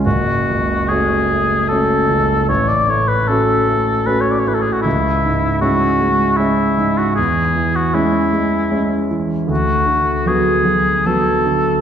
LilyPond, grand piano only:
\new Staff \with { instrumentName = "Grand piano" } { \time 3/4 \key fis \minor \tempo 4 = 76 fis,,8 cis,8 <a cis' fis'>8 a8 <a cis' fis'>8 cis,8 | a,,8 a,8 <a cis' fis'>8 a8 <a cis' fis'>8 a,8 | cis,8 gis,8 <gis cis' e'>8 gis8 <gis cis' e'>8 gis,8 | e,8 e8 <gis cis' e'>8 gis8 <gis cis' e'>8 e8 |
d,8 d8 <fis b fis'>8 fis8 <fis b fis'>8 d8 | }